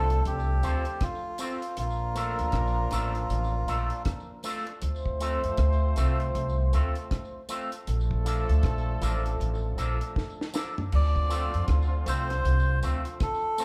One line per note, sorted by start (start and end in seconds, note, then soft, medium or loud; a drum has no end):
0.00 0.21 C2 medium
0.00 1.35 F3 medium
0.00 1.35 A3 medium
0.00 1.35 D4 medium
0.00 0.23 A4 loud
0.00 1.35 A4 medium
0.10 muted clean electric guitar stroke soft
0.10 closed hi-hat soft
0.25 0.60 C2 medium
0.25 1.04 G4 medium
0.25 closed hi-hat medium
0.63 0.85 D2 medium
0.63 0.83 C4 medium
0.63 0.83 F4 medium
0.63 0.84 A4 medium
0.63 0.84 C5 medium
0.63 closed hi-hat medium
0.63 tambourine soft
0.85 closed hi-hat soft
1.01 1.77 F4 medium
1.01 kick loud
1.01 cross-stick medium
1.01 closed hi-hat medium
1.38 1.59 C4 medium
1.38 1.60 F4 medium
1.38 1.60 A4 medium
1.38 1.60 C5 medium
1.38 closed hi-hat medium
1.38 tambourine medium
1.62 closed hi-hat medium
1.76 2.33 A#1 medium
1.76 4.40 F3 medium
1.76 4.40 A#3 medium
1.76 4.40 D4 medium
1.76 4.03 F4 medium
1.76 4.40 A#4 medium
1.76 closed hi-hat loud
2.15 2.35 A3 medium
2.15 2.36 D4 medium
2.15 2.36 F4 medium
2.15 2.36 A4 medium
2.15 closed hi-hat medium
2.15 tambourine medium
2.39 2.52 D2 medium
2.39 closed hi-hat medium
2.52 2.88 A#1 medium
2.52 kick loud
2.52 cross-stick loud
2.52 closed hi-hat medium
2.91 3.26 A1 medium
2.91 3.12 A3 medium
2.91 3.12 D4 medium
2.91 3.12 F4 medium
2.91 3.13 A4 medium
2.91 cross-stick medium
2.91 closed hi-hat medium
2.91 tambourine medium
3.15 muted clean electric guitar stroke soft
3.15 closed hi-hat soft
3.30 3.64 A1 loud
3.30 closed hi-hat medium
3.67 3.89 A#1 medium
3.67 3.88 A3 medium
3.67 3.88 D4 medium
3.67 3.88 F4 medium
3.67 3.89 A4 medium
3.67 closed hi-hat medium
3.67 tambourine soft
3.90 closed hi-hat soft
4.05 kick loud
4.05 cross-stick loud
4.05 closed hi-hat medium
4.43 4.64 A3 medium
4.43 4.64 D4 medium
4.43 4.65 F4 medium
4.43 4.65 A4 medium
4.43 open hi-hat medium
4.43 tambourine medium
4.67 closed hi-hat medium
4.82 5.38 D2 loud
4.82 7.45 A3 medium
4.82 7.45 C4 medium
4.82 7.45 F4 medium
4.82 7.45 C5 medium
4.82 closed hi-hat medium
5.06 kick medium
5.20 5.40 A3 medium
5.20 5.41 C4 medium
5.20 5.41 F4 medium
5.20 5.41 A4 medium
5.20 closed hi-hat medium
5.20 tambourine medium
5.44 5.57 F2 medium
5.44 closed hi-hat medium
5.57 5.93 D2 medium
5.57 kick loud
5.57 cross-stick loud
5.57 closed hi-hat medium
5.96 6.31 C2 loud
5.96 6.16 A3 medium
5.96 6.17 C4 medium
5.96 6.17 F4 medium
5.96 6.17 A4 loud
5.96 cross-stick medium
5.96 closed hi-hat medium
5.96 tambourine medium
6.20 muted clean electric guitar stroke soft
6.20 closed hi-hat soft
6.35 6.69 C2 loud
6.35 closed hi-hat medium
6.73 6.94 D2 medium
6.73 6.93 A3 medium
6.73 6.93 C4 medium
6.73 6.94 F4 medium
6.73 6.94 A4 medium
6.73 closed hi-hat medium
6.73 tambourine soft
6.95 closed hi-hat soft
7.11 kick medium
7.11 cross-stick medium
7.11 closed hi-hat medium
7.49 7.69 A3 medium
7.49 7.69 C4 medium
7.49 7.70 F4 medium
7.49 7.70 A4 medium
7.49 closed hi-hat medium
7.49 tambourine medium
7.72 closed hi-hat medium
7.87 8.43 A#1 medium
7.87 10.50 F3 medium
7.87 10.50 A3 medium
7.87 10.50 D4 medium
7.87 10.50 A4 loud
7.87 closed hi-hat medium
8.11 kick medium
8.25 8.45 F3 medium
8.25 8.46 A#3 medium
8.25 8.46 D4 medium
8.25 8.46 A4 medium
8.25 closed hi-hat medium
8.25 tambourine medium
8.49 8.62 D2 medium
8.49 closed hi-hat soft
8.63 8.98 A#1 medium
8.63 kick loud
8.63 cross-stick medium
8.63 closed hi-hat medium
9.01 9.36 A1 medium
9.01 9.21 F3 medium
9.01 9.22 A#3 medium
9.01 9.22 D4 medium
9.01 9.22 A4 medium
9.01 closed hi-hat medium
9.01 tambourine medium
9.25 muted clean electric guitar stroke soft
9.25 closed hi-hat soft
9.40 9.74 A1 medium
9.40 closed hi-hat medium
9.77 9.99 A#1 medium
9.77 9.97 F3 medium
9.77 9.98 A#3 medium
9.77 9.98 D4 medium
9.77 9.98 A4 medium
9.77 closed hi-hat medium
9.77 tambourine soft
10.01 closed hi-hat medium
10.16 kick medium
10.16 snare soft
10.41 snare medium
10.53 10.74 F3 medium
10.53 10.74 A#3 medium
10.53 10.74 D4 medium
10.53 10.75 A4 medium
10.53 snare medium
10.53 tambourine medium
10.78 floor tom medium
10.92 11.48 D2 loud
10.92 13.55 D3 medium
10.92 13.55 F3 medium
10.92 13.55 C4 medium
10.92 13.55 F4 medium
10.92 11.66 D5 loud
10.92 crash medium
11.16 kick medium
11.29 11.50 A3 medium
11.29 11.50 C4 medium
11.29 11.51 F4 medium
11.29 11.51 A4 medium
11.29 closed hi-hat medium
11.29 tambourine medium
11.54 11.67 F2 medium
11.54 closed hi-hat soft
11.68 12.03 D2 medium
11.68 kick medium
11.68 cross-stick medium
11.68 closed hi-hat medium
12.06 12.41 C2 medium
12.06 12.26 A3 medium
12.06 12.27 C4 medium
12.06 12.27 F4 medium
12.06 12.27 A4 medium
12.06 12.80 C5 loud
12.06 closed hi-hat medium
12.06 tambourine medium
12.30 muted clean electric guitar stroke soft
12.30 cross-stick medium
12.30 closed hi-hat soft
12.45 12.79 C2 loud
12.45 closed hi-hat medium
12.82 13.04 D2 medium
12.82 13.03 A3 medium
12.82 13.03 C4 medium
12.82 13.03 F4 medium
12.82 13.04 A4 medium
12.82 closed hi-hat medium
12.82 tambourine soft
13.05 closed hi-hat soft
13.20 13.65 A4 medium
13.20 kick loud
13.20 cross-stick medium
13.20 closed hi-hat medium
13.58 13.65 A3 medium
13.58 13.65 C4 medium
13.58 13.65 F4 medium
13.58 13.65 A4 medium
13.58 open hi-hat soft
13.58 tambourine medium